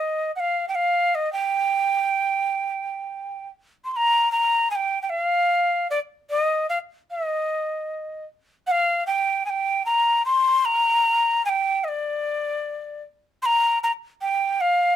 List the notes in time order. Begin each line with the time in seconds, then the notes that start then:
Already playing: D#5
0.36 F#5
0.40 F5
0.68 G5
0.75 F5
1.15 D#5
1.33 G5
3.85 C6
3.92 C6
3.96 A#5
4.32 A#5
4.71 G#5
4.75 G5
5.02 G5
5.10 F5
5.90 D5
6.30 D#5
6.69 F5
7.11 D#5
8.67 F#5
8.71 F5
9.07 G5
9.46 G5 G#5
9.86 A#5
10.26 C6
10.65 A#5
11.46 G5 G#5
11.84 D#5
11.88 D5
13.42 A#5 C6
13.83 A#5
14.21 G5
14.61 F5